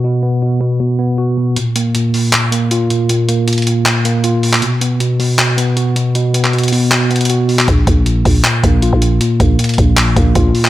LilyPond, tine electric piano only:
\new Staff \with { instrumentName = "Tine electric piano" } { \clef bass \time 4/4 \key ces \lydian \tempo 4 = 157 <b, b fis'>8 b8 b,8 b,8 b,8 b8 fis'8 b,8 | bes,8 bes8 bes,8 bes,4 bes8 f'8 bes,8 | bes,8 bes8 bes,8 bes,8 bes,8 bes8 f'8 bes,8 | b,8 b8 b,8 b,8 b,8 b8 fis'8 b,8 |
b,8 b8 b,8 b,8 b,8 b8 fis'8 b,8 | bes,8 bes8 bes,8 bes,8 bes,8 bes8 f'8 bes,8 | bes,8 bes8 bes,8 bes,8 bes,8 bes8 f'8 bes,8 | }